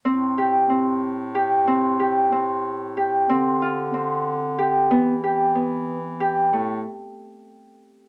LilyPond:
<<
  \new Staff \with { instrumentName = "Harp" } { \time 5/8 \key a \minor \tempo 4 = 93 c'8 g'8 c'4 g'8 | c'8 g'8 c'4 g'8 | c'8 f'8 c'4 g'8 | b8 g'8 b4 g'8 |
a8 r2 | }
  \new Staff \with { instrumentName = "Bass clarinet" } { \clef bass \time 5/8 \key a \minor a,2~ a,8~ | a,2~ a,8 | d2~ d8 | e2~ e8 |
a,8 r2 | }
>>